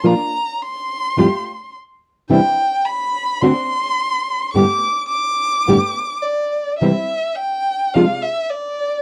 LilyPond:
<<
  \new Staff \with { instrumentName = "Violin" } { \time 4/4 \key c \major \tempo 4 = 106 bes''4 c'''2 r4 | g''4 b''4 c'''2 | d'''4 d'''2 d''4 | e''4 g''4 f''8 e''8 d''4 | }
  \new Staff \with { instrumentName = "String section" } { \time 4/4 \key c \major <bes d' f'>8 r4. <a f' g'>8 r4. | <e c' d' e'>8 r4. <c' d' fis'>8 r4. | <a b g'>8 r4. <a b g'>8 r4. | <g c' e'>8 r4. <c aes d' f'>8 r4. | }
  \new Staff \with { instrumentName = "Nylon-string guitar" } { \clef bass \time 4/4 \key c \major <bes, f bes d' f'>8 r4. <f, a, f g c' f'>8 r4. | <e, c e g d' e'>8 r4. <d a c' fis'>8 r4. | <g, a, d g b g'>8 r4. <g, a, d g b g'>8 r4. | <c e g c' e'>8 r4. <c f aes d' f'>8 r4. | }
>>